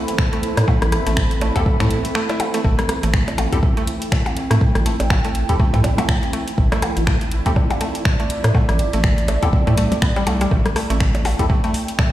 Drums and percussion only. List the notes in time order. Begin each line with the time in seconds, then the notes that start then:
0.08 closed hi-hat
0.18 finger snap, kick
0.33 closed hi-hat
0.43 closed hi-hat
0.57 cross-stick, closed hi-hat, percussion blips
0.68 kick, percussion blips
0.82 cross-stick, closed hi-hat, percussion blips
0.92 cross-stick, closed hi-hat
1.07 closed hi-hat
1.17 finger snap, kick
1.31 closed hi-hat
1.41 closed hi-hat, percussion blips
1.56 kick, closed hi-hat, percussion blips
1.66 kick
1.80 finger snap, kick, closed hi-hat, percussion blips
1.91 closed hi-hat
2.05 closed hi-hat
2.15 finger snap
2.29 closed hi-hat, percussion blips
2.40 closed hi-hat, percussion blips
2.54 closed hi-hat
2.64 kick
2.79 cross-stick, closed hi-hat, percussion blips
2.89 cross-stick, closed hi-hat
3.03 closed hi-hat
3.14 finger snap, kick
3.28 closed hi-hat, percussion blips
3.38 closed hi-hat, percussion blips
3.53 kick, closed hi-hat
3.63 kick
3.77 closed hi-hat
3.87 closed hi-hat
4.02 closed hi-hat
4.12 finger snap, kick, percussion blips
4.26 closed hi-hat, percussion blips
4.37 closed hi-hat
4.51 cross-stick, closed hi-hat
4.61 kick
4.75 cross-stick, closed hi-hat, percussion blips
4.86 closed hi-hat
5.00 closed hi-hat, percussion blips
5.10 finger snap, kick, percussion blips
5.25 closed hi-hat
5.35 closed hi-hat
5.49 kick, closed hi-hat
5.60 kick
5.74 kick, closed hi-hat, percussion blips
5.84 closed hi-hat, percussion blips
5.98 closed hi-hat, percussion blips
6.09 finger snap, kick
6.23 closed hi-hat
6.33 closed hi-hat
6.48 closed hi-hat
6.58 kick
6.72 cross-stick, closed hi-hat, percussion blips
6.82 cross-stick, closed hi-hat, percussion blips
6.97 closed hi-hat
7.07 finger snap, kick
7.21 closed hi-hat
7.32 closed hi-hat
7.46 kick, closed hi-hat
7.56 kick, percussion blips
7.70 closed hi-hat, percussion blips
7.81 closed hi-hat
7.95 closed hi-hat
8.05 finger snap, kick
8.20 closed hi-hat
8.30 closed hi-hat
8.44 cross-stick, closed hi-hat, percussion blips
8.55 kick, percussion blips
8.69 cross-stick, closed hi-hat, percussion blips
8.79 closed hi-hat
8.93 closed hi-hat
9.04 finger snap, kick
9.18 closed hi-hat
9.28 closed hi-hat, percussion blips
9.43 kick, closed hi-hat, percussion blips
9.53 kick
9.67 kick, closed hi-hat, percussion blips
9.78 closed hi-hat
9.92 closed hi-hat, percussion blips
10.02 finger snap, kick
10.16 closed hi-hat, percussion blips
10.27 closed hi-hat, percussion blips
10.41 closed hi-hat
10.51 kick
10.66 cross-stick, closed hi-hat, percussion blips
10.76 cross-stick, open hi-hat
10.90 closed hi-hat
11.00 finger snap, kick
11.15 closed hi-hat, percussion blips
11.25 open hi-hat, percussion blips
11.39 kick, closed hi-hat
11.50 kick
11.64 closed hi-hat
11.74 open hi-hat
11.88 closed hi-hat
11.99 finger snap, kick, percussion blips